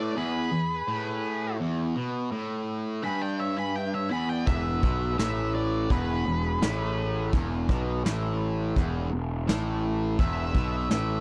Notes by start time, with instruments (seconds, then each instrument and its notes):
Already playing: overdriven electric guitar A2, lead electric guitar B4 D5
0.16 overdriven electric guitar E2, lead electric guitar G#4 B4
0.52 overdriven electric guitar E2
0.88 overdriven electric guitar A2
1.60 overdriven electric guitar E2
1.95 overdriven electric guitar B2
2.31 overdriven electric guitar A2
3.03 overdriven electric guitar G2, lead electric guitar G#5 B5
3.22 lead electric guitar D5 G5
3.40 lead electric guitar C#5 E5
3.57 lead electric guitar G#5 B5
3.76 lead electric guitar E5 G5
3.94 lead electric guitar C#5 E5
4.09 overdriven electric guitar E2, lead electric guitar G#5 B5
4.29 lead electric guitar D5 G5
4.46 picked electric bass E1, overdriven electric guitar E2, lead electric guitar B4 E5, kick, open hi-hat
4.82 picked electric bass B1, overdriven electric guitar B2, kick
5.18 picked electric bass A1, overdriven electric guitar A2, lead electric guitar B4 E5, snare
5.55 lead electric guitar B4 D5
5.90 picked electric bass E1, overdriven electric guitar E2, lead electric guitar G#4 B4, kick, open hi-hat
6.26 picked electric bass E1, overdriven electric guitar E2
6.61 picked electric bass A1, overdriven electric guitar A2, snare, open hi-hat
7.33 picked electric bass E1, overdriven electric guitar E2, kick, open hi-hat
7.69 picked electric bass B1, overdriven electric guitar B2, kick
8.04 picked electric bass A1, overdriven electric guitar A2, snare, open hi-hat
8.76 picked electric bass E1, overdriven electric guitar E2, kick, open hi-hat
9.12 picked electric bass E1, overdriven electric guitar E2
9.48 picked electric bass A1, overdriven electric guitar A2, snare
10.18 picked electric bass E1, overdriven electric guitar E2, lead electric guitar B4 E5, kick, open hi-hat
10.54 picked electric bass B1, overdriven electric guitar B2, kick
10.90 picked electric bass A1, overdriven electric guitar A2, lead electric guitar B4 E5, snare